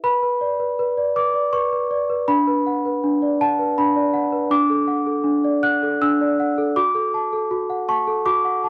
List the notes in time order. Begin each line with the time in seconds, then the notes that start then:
0.04 B4 B5
0.23 B4
0.41 D5
0.60 B4
0.79 B4
0.97 D5
1.16 B4 D6
1.34 D5
1.53 B4 C#6
1.72 B4
1.91 D5
2.10 B4
2.28 D4 B5
2.47 B4
2.67 F#5
2.85 B4
3.04 D4
3.22 D5
3.41 F#5 A5
3.59 B4
3.78 D4 B5
3.96 D5
4.14 F#5
4.32 B4
4.51 D4 D6
4.70 A4
4.87 F#5
5.07 A4
5.24 D4
5.44 D5
5.63 F#5 F#6
5.83 A4
6.02 D4 E6
6.21 D5
6.40 F#5
6.58 A4
6.76 F#4 D6
6.95 A4
7.14 A5
7.33 A4
7.51 F#4
7.70 F#5
7.88 A5 C#6
8.07 A4
8.26 F#4 D6
8.45 F#5
8.64 A5